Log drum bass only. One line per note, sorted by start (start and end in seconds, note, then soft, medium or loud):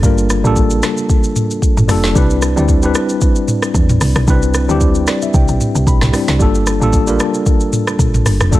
0.03 0.43 G1 loud
0.44 0.81 A1 medium
1.77 1.89 G1 medium
1.89 2.15 F1 medium
2.16 2.55 C2 loud
2.57 2.94 D2 medium
3.74 4.00 E2 medium
4.01 4.15 C2 medium
4.16 4.27 B1 medium
4.28 4.67 C2 loud
4.69 5.06 D2 medium
5.34 5.48 C2 loud
5.49 5.60 B1 medium
5.75 5.86 C2 medium
5.87 6.01 B1 medium
6.02 6.13 C2 medium
6.29 6.41 C2 medium
6.40 6.80 G1 loud
6.81 7.19 A1 medium
7.99 8.25 A#1 medium
8.26 8.40 G1 medium
8.41 8.52 F1 medium
8.52 8.60 G1 loud